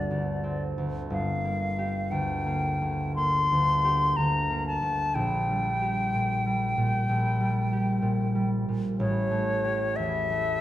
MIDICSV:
0, 0, Header, 1, 3, 480
1, 0, Start_track
1, 0, Key_signature, -2, "minor"
1, 0, Tempo, 991736
1, 544, Time_signature, 4, 2, 24, 8
1, 1029, Tempo, 1050788
1, 1509, Tempo, 1000000
1, 1989, Tempo, 977199
1, 2949, Tempo, 953895
1, 4389, Tempo, 995025
1, 5169, End_track
2, 0, Start_track
2, 0, Title_t, "Flute"
2, 0, Program_c, 0, 73
2, 0, Note_on_c, 0, 74, 51
2, 307, Note_off_c, 0, 74, 0
2, 543, Note_on_c, 0, 77, 54
2, 1022, Note_on_c, 0, 79, 48
2, 1029, Note_off_c, 0, 77, 0
2, 1498, Note_off_c, 0, 79, 0
2, 1501, Note_on_c, 0, 84, 58
2, 1983, Note_on_c, 0, 82, 50
2, 1991, Note_off_c, 0, 84, 0
2, 2226, Note_off_c, 0, 82, 0
2, 2232, Note_on_c, 0, 81, 49
2, 2465, Note_on_c, 0, 79, 62
2, 2473, Note_off_c, 0, 81, 0
2, 4142, Note_off_c, 0, 79, 0
2, 4390, Note_on_c, 0, 73, 58
2, 4856, Note_on_c, 0, 76, 66
2, 4863, Note_off_c, 0, 73, 0
2, 5169, Note_off_c, 0, 76, 0
2, 5169, End_track
3, 0, Start_track
3, 0, Title_t, "Harp"
3, 0, Program_c, 1, 46
3, 0, Note_on_c, 1, 31, 31
3, 0, Note_on_c, 1, 60, 29
3, 0, Note_on_c, 1, 66, 23
3, 52, Note_on_c, 1, 38, 26
3, 206, Note_off_c, 1, 60, 0
3, 211, Note_on_c, 1, 60, 28
3, 371, Note_off_c, 1, 38, 0
3, 377, Note_on_c, 1, 38, 27
3, 528, Note_off_c, 1, 31, 0
3, 534, Note_on_c, 1, 31, 35
3, 555, Note_off_c, 1, 66, 0
3, 557, Note_off_c, 1, 60, 0
3, 560, Note_off_c, 1, 38, 0
3, 701, Note_on_c, 1, 58, 27
3, 864, Note_on_c, 1, 67, 28
3, 1024, Note_on_c, 1, 38, 28
3, 1177, Note_off_c, 1, 58, 0
3, 1182, Note_on_c, 1, 58, 28
3, 1339, Note_off_c, 1, 38, 0
3, 1345, Note_on_c, 1, 38, 29
3, 1503, Note_off_c, 1, 58, 0
3, 1508, Note_on_c, 1, 58, 31
3, 1668, Note_off_c, 1, 38, 0
3, 1674, Note_on_c, 1, 38, 30
3, 1824, Note_off_c, 1, 67, 0
3, 1830, Note_on_c, 1, 67, 28
3, 1986, Note_off_c, 1, 38, 0
3, 1992, Note_on_c, 1, 38, 28
3, 2141, Note_off_c, 1, 58, 0
3, 2147, Note_on_c, 1, 58, 25
3, 2300, Note_off_c, 1, 38, 0
3, 2306, Note_on_c, 1, 38, 27
3, 2395, Note_off_c, 1, 31, 0
3, 2468, Note_on_c, 1, 34, 39
3, 2487, Note_off_c, 1, 38, 0
3, 2636, Note_on_c, 1, 55, 25
3, 2790, Note_off_c, 1, 67, 0
3, 2796, Note_on_c, 1, 67, 29
3, 2954, Note_on_c, 1, 46, 29
3, 3105, Note_off_c, 1, 55, 0
3, 3112, Note_on_c, 1, 55, 27
3, 3266, Note_off_c, 1, 46, 0
3, 3272, Note_on_c, 1, 46, 33
3, 3427, Note_off_c, 1, 34, 0
3, 3433, Note_on_c, 1, 34, 32
3, 3585, Note_off_c, 1, 55, 0
3, 3591, Note_on_c, 1, 55, 32
3, 3745, Note_off_c, 1, 67, 0
3, 3751, Note_on_c, 1, 67, 26
3, 3895, Note_off_c, 1, 46, 0
3, 3901, Note_on_c, 1, 46, 30
3, 4060, Note_off_c, 1, 55, 0
3, 4066, Note_on_c, 1, 55, 27
3, 4089, Note_off_c, 1, 58, 0
3, 4229, Note_off_c, 1, 46, 0
3, 4235, Note_on_c, 1, 46, 29
3, 4391, Note_on_c, 1, 33, 40
3, 4409, Note_off_c, 1, 34, 0
3, 4411, Note_off_c, 1, 46, 0
3, 4542, Note_on_c, 1, 57, 30
3, 4697, Note_off_c, 1, 67, 0
3, 4703, Note_on_c, 1, 67, 33
3, 4867, Note_on_c, 1, 40, 28
3, 5015, Note_off_c, 1, 57, 0
3, 5021, Note_on_c, 1, 57, 32
3, 5169, Note_off_c, 1, 33, 0
3, 5169, Note_off_c, 1, 40, 0
3, 5169, Note_off_c, 1, 55, 0
3, 5169, Note_off_c, 1, 57, 0
3, 5169, Note_off_c, 1, 67, 0
3, 5169, End_track
0, 0, End_of_file